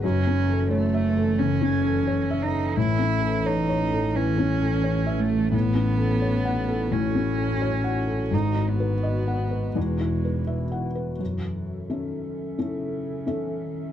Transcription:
0.03 F#1 F#2 E3 C#4 A4
0.27 C#4
0.49 A4
0.71 A3 C#5
0.94 E5
1.17 A4
1.39 C#3 C#4
1.62 C#4
1.85 A4
2.07 C#5
2.31 E5
2.43 D#4
2.53 A4
2.76 A1 A2 E4
2.99 C#4
3.22 A4
3.46 D#4 C#5
3.69 C#5
3.93 A4
4.16 E3 C#4
4.38 C#4
4.61 A4
4.84 C#5
5.06 E5
5.19 A3
5.29 A4
5.52 A2 B3 E4 F#4 A4
5.75 C#4
5.98 A4
6.22 C#5
6.45 F#5
6.68 A4
6.91 A2 C#4
7.15 C#4
7.38 A4
7.62 C#5
7.84 F#5
8.07 A4
8.31 G#1 G#2 D#4 B4
8.55 D#4
8.68 B3
8.80 B4
9.03 D#5
9.28 F#5
9.51 B4
9.75 E1 E2 G#3 E4
10.01 E4
10.25 B4
10.47 E5
10.72 F#5
10.95 B4
11.19 F#2 E3 C#4 A4 E5
11.90 D#3 C#4 A4 E5
12.59 C#3 C#4 E4 A4
13.27 E3 C#4 A4 E5
13.62 D#3

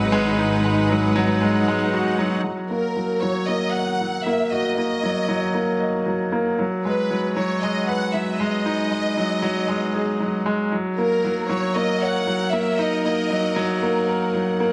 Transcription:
Already playing: G#1 F#3 G#3 D#4 B4 F#5
0.12 G#3
0.38 D#4
0.64 G#3
0.89 F#3
1.16 F#3
1.41 G#3
1.68 G#3
1.94 F#4
2.19 F#3
2.44 D#3 F#3
2.70 A#3 A#4
2.79 A#4
2.96 F#3
3.21 F#3 C#5
3.47 A#3 D#5
3.73 F#5
4.01 F#3
4.25 A#3 E5
4.51 F#4 D#5
4.78 A#3 D#5
5.03 F#3
5.28 F#3
5.54 A#3
5.80 D#5
6.06 F#3
6.32 A#3
6.58 F#3 G#3
6.84 G#3 B4
7.10 F#3
7.15 B4
7.36 F#3 C#5
7.62 G#3 D#5
7.89 B4 F#5
8.14 F#3 E5
8.40 G#3 D#5
8.66 D#4
8.91 G#3
9.17 F#3
9.42 F#3
9.68 G#3
9.94 G#4
10.20 F#3
10.46 G#3
10.72 F#3
10.87 D#4
10.98 A#3 A#4
11.03 A#4
11.15 F#5
11.24 F#3
11.49 F#3 C#5
11.76 A#3 D#5
12.02 C#5 F#5
12.27 F#3
12.53 A#3 E5
12.79 D#4 D#5
13.04 A#3 D#5
13.30 F#3
13.56 F#3
13.83 A#3
14.08 A#4
14.34 F#3
14.60 A#3

